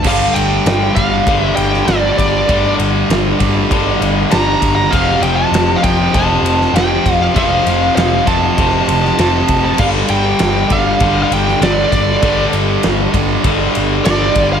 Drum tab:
CC |x---------------|----------------|----------------|----------------|
RD |--x-x-x-x-x-x-x-|x-x-x-x-x-x-x-x-|x-x-x-x-x-x-x-x-|x-x-x-x-x-x-x-x-|
SD |----o------oo---|----o-------o---|----o------oo---|----o------oo---|
BD |o-----o-o-----o-|o-----o-o-----o-|o-----o-o-----o-|o-----o-o-----o-|

CC |x---------------|----------------|
RD |--x-x-x-x-x-x-x-|x-x-x-x-x-x-x-x-|
SD |----o------oo---|----o-------o---|
BD |o-----o-o-----o-|o-----o-o-----o-|